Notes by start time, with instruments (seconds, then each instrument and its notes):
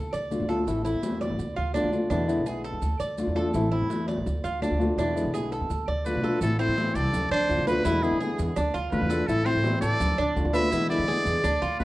Already playing: upright bass D2, cuban tres A4
0.13 upright bass D2, cuban tres D5, high conga, maracas
0.31 nylon-string guitar D3 A3 D4 F4, high conga, maracas
0.40 upright bass D2
0.49 nylon-string guitar A3 D4 F4, cuban tres A4, high conga, maracas
0.66 upright bass A1, nylon-string guitar E3 A3 C4 E4, high conga, maracas
0.84 nylon-string guitar A3 C4 E4, cuban tres E4, high conga, maracas
0.94 upright bass E2
1.02 nylon-string guitar E3 A3 C4 E4, high conga, maracas
1.21 cuban tres D5, high conga, maracas
1.30 upright bass A1
1.38 upright bass D2, muted nylon-string guitar stroke, high conga, maracas
1.56 upright bass D2, cuban tres F4, high conga
1.74 nylon-string guitar D3 A3 D4 F4, cuban tres D4, high conga, maracas
1.84 upright bass D2
1.92 nylon-string guitar A3 D4 F4, high conga, maracas
2.10 upright bass E2, nylon-string guitar B2 D3 G#3 B3 E4, cuban tres D4, high conga, maracas
2.28 nylon-string guitar D3 G#3 B3 E4, maracas
2.37 upright bass B1
2.46 nylon-string guitar D3 G#3 B3 E4, cuban tres G#4, high conga, maracas
2.65 cuban tres A4, high conga, maracas
2.73 upright bass E2
2.82 upright bass D2, muted nylon-string guitar stroke, high conga, maracas
3.00 upright bass D2, cuban tres D5, high conga, maracas
3.18 nylon-string guitar D3 A3 D4 F4, high conga, maracas
3.27 upright bass E2
3.36 nylon-string guitar A3 D4 F4, cuban tres A4, high conga, maracas
3.54 upright bass A1, nylon-string guitar E3 A3 C4 E4, high conga, maracas
3.72 nylon-string guitar A3 C4 E4, cuban tres E4, high conga
3.82 upright bass E2
3.90 nylon-string guitar E3 A3 C4 E4, high conga, maracas
4.08 cuban tres D5, high conga, maracas
4.17 upright bass A1
4.26 upright bass D2, muted nylon-string guitar stroke, high conga, maracas
4.44 upright bass D2, cuban tres F4, high conga, maracas
4.62 nylon-string guitar D3 A3 D4 F4, cuban tres D4, high conga, maracas
4.71 upright bass D2
4.80 nylon-string guitar A3 D4 F4, high conga, maracas
4.98 upright bass E2, nylon-string guitar B2 D3 G#3 B3 E4, cuban tres D4, high conga, maracas
5.16 nylon-string guitar D3 G#3 B3 E4, high conga, maracas
5.25 upright bass B1
5.34 nylon-string guitar D3 G#3 B3 E4, cuban tres G#4, high conga, maracas
5.52 cuban tres A4, high conga, maracas
5.61 upright bass E2
5.70 upright bass D2, muted nylon-string guitar stroke, high conga, maracas
5.88 upright bass D2, cuban tres D5, high conga
6.05 nylon-string guitar D3 A3 D4 F4, muted trumpet B4, high conga, maracas
6.15 upright bass B1
6.23 nylon-string guitar A3 D4 F4, cuban tres A4, high conga, maracas
6.41 upright bass A1, nylon-string guitar E3 A3 C4 E4, muted trumpet A4, high conga, maracas
6.59 nylon-string guitar A3 C4 E4, cuban tres C4, muted trumpet C5, high conga, maracas
6.68 upright bass A2
6.77 nylon-string guitar E3 A3 C4 E4, high conga, maracas
6.95 upright bass C2, cuban tres A4, muted trumpet D5, maracas
7.13 upright bass D2, muted nylon-string guitar stroke, high conga, low conga, maracas
7.31 upright bass D2, cuban tres D4, muted trumpet C5, high conga, maracas
7.49 upright bass D2, nylon-string guitar D3 A3 D4 F4, high conga, maracas
7.59 upright bass D2
7.67 nylon-string guitar A3 D4 F4, cuban tres B4, muted trumpet B4, high conga, maracas
7.85 upright bass E2, nylon-string guitar B2 D3 G#3 B3 E4, cuban tres E4, high conga, maracas
8.03 nylon-string guitar D3 G#3 B3 E4, muted trumpet G#4, high conga, maracas
8.12 upright bass E3
8.20 nylon-string guitar D3 G#3 B3 E4, cuban tres G#4, high conga, maracas
8.39 upright bass E2, maracas
8.56 upright bass D2, cuban tres D4, muted nylon-string guitar stroke, high conga, maracas
8.74 upright bass D2, cuban tres F4, high conga, maracas
8.92 upright bass D2, nylon-string guitar D3 A3 D4 F4, muted trumpet B4, high conga, maracas
9.01 upright bass E2
9.10 nylon-string guitar A3 D4 F4, cuban tres A4, high conga, maracas
9.27 upright bass A1, nylon-string guitar E3 A3 C4 E4, muted trumpet A4, high conga, maracas
9.45 nylon-string guitar A3 C4 E4, cuban tres C4, muted trumpet C5, high conga, maracas
9.55 upright bass A2
9.64 nylon-string guitar E3 A3 C4 E4, high conga, maracas
9.81 upright bass A1, cuban tres A4, muted trumpet D5, maracas
10.00 upright bass D2, muted nylon-string guitar stroke, high conga, low conga, maracas
10.18 upright bass D2, cuban tres D4, high conga, maracas
10.36 upright bass D2, nylon-string guitar D3 A3 D4 F4, high conga, maracas
10.45 upright bass D2
10.54 nylon-string guitar A3 D4 F4, cuban tres B4, muted trumpet E5, high conga, maracas
10.72 upright bass E2, nylon-string guitar B2 D3 G#3 B3 E4, cuban tres E4, high conga, maracas
10.90 nylon-string guitar D3 G#3 B3 E4, muted trumpet D5, high conga, maracas
10.99 upright bass E3
11.08 nylon-string guitar D3 G#3 B3, cuban tres G#4, high conga, maracas
11.26 upright bass E2, maracas
11.44 upright bass D2, cuban tres D4, muted nylon-string guitar stroke, high conga, maracas
11.62 upright bass D2, cuban tres F4, high conga, maracas
11.80 upright bass D2, nylon-string guitar D3 A3 D4, muted trumpet B4, high conga, maracas